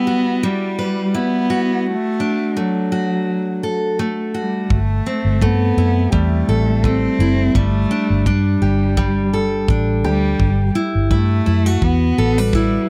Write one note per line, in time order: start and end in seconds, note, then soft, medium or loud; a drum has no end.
0.00 0.42 G3 medium
0.00 0.46 B3 loud
0.00 1.13 E4 medium
0.07 1.49 F#4 medium
0.43 1.93 G3 medium
0.43 1.16 G3 medium
0.79 1.93 B4 medium
1.14 1.89 B3 medium
1.14 1.93 E4 medium
1.50 2.92 F#4 medium
1.87 2.59 A3 medium
2.20 4.77 D4 soft
2.57 3.99 F#3 medium
2.57 3.99 A3 medium
2.92 4.33 F#4 medium
3.63 6.15 A4 medium
3.99 5.42 A3 medium
4.34 4.74 G3 medium
4.34 4.78 F#4 soft
4.70 4.99 G1 medium
4.70 5.45 A3 medium
4.70 kick medium
5.06 7.63 C4 medium
5.25 5.38 G1 medium
5.42 5.71 G2 medium
5.42 6.85 A3 medium
5.42 6.13 B3 medium
5.42 kick medium
5.77 6.06 F#2 medium
5.77 7.19 E4 medium
6.12 6.42 E2 medium
6.12 7.55 G3 medium
6.12 6.86 A3 medium
6.12 kick medium
6.48 7.07 A1 medium
6.48 8.65 A4 medium
6.84 7.55 A3 medium
6.84 7.57 C4 medium
6.84 kick medium
7.19 7.48 F#1 medium
7.19 7.63 E4 medium
7.55 7.84 G1 medium
7.55 8.97 G3 medium
7.55 8.29 A3 medium
7.55 kick medium
7.91 8.25 D4 medium
8.10 8.23 G1 medium
8.26 8.55 G2 medium
8.26 9.69 G3 medium
8.26 9.69 D4 medium
8.26 kick medium
8.61 9.64 G1 medium
8.61 10.04 G4 medium
8.97 11.69 G3 medium
8.97 kick medium
9.33 10.48 A4 medium
9.68 10.04 A1 medium
9.68 10.48 D4 medium
9.68 kick loud
10.04 10.33 D2 medium
10.04 10.72 G3 loud
10.04 11.46 G4 medium
10.39 10.69 G1 medium
10.39 kick medium
10.75 11.10 E4 medium
10.95 11.08 G1 medium
11.10 11.40 G2 medium
11.10 11.85 A3 medium
11.10 11.45 E4 medium
11.10 kick medium
11.46 11.76 F#2 medium
11.46 11.66 E4 medium
11.66 12.88 F#4 soft
11.82 12.11 E2 medium
11.82 12.40 B3 medium
11.82 kick loud
12.18 12.76 A1 medium
12.18 12.38 A4 medium
12.38 12.89 G3 medium
12.38 12.89 B4 soft
12.53 12.89 E4 medium
12.53 kick loud